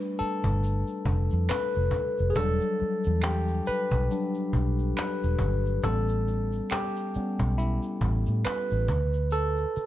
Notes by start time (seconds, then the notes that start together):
Already playing: G3 A3 D4 B4
0.00 shaker
0.19 A4, muted fingered electric bass stroke, cajon slap, shaker
0.43 G1, cajon bass, shaker
0.63 cajon slap, shaker
0.87 shaker
1.05 F1, cajon bass, shaker
1.30 F2, cajon slap, shaker
1.49 B4, finger snap, muted fingered electric bass stroke, cajon slap, shaker
1.75 F1, shaker
1.91 cajon bass, shaker
2.18 F1, cajon slap, shaker
2.30 G#4
2.35 E1 F#3 G3 D4 A4, cajon bass, shaker
2.61 shaker
2.80 muted fingered electric bass stroke, cajon slap
3.04 E2, cajon slap, shaker
3.22 G4, finger snap, cajon slap, shaker
3.48 shaker
3.66 B4, muted fingered electric bass stroke, cajon slap, shaker
3.91 B1, cajon bass, shaker
4.11 F#3 G3 D4, cajon slap, shaker
4.34 shaker
4.53 B1, cajon bass
4.79 cajon slap, shaker
4.97 B4, finger snap, cajon slap, shaker
5.23 E1, shaker
5.39 G1, cajon bass, shaker
5.66 cajon slap, shaker
5.83 A1 G3 B3 C#4 A4, cajon bass, shaker
6.09 shaker
6.28 cajon slap, shaker
6.52 cajon slap, shaker
6.70 G4, finger snap, cajon slap, shaker
6.96 shaker
7.14 G3 B3 C#4, muted fingered electric bass stroke, cajon slap, shaker
7.39 B1, cajon bass, shaker
7.58 E4, cajon slap, shaker
7.83 shaker
8.01 A1, cajon bass, shaker
8.26 A2, cajon slap, shaker
8.45 B4, finger snap, muted fingered electric bass stroke, cajon slap, shaker
8.71 A1, shaker
8.88 D2, cajon bass, shaker
9.13 cajon slap, shaker
9.31 A4, cajon slap, shaker
9.56 shaker
9.76 muted fingered electric bass stroke, cajon slap, shaker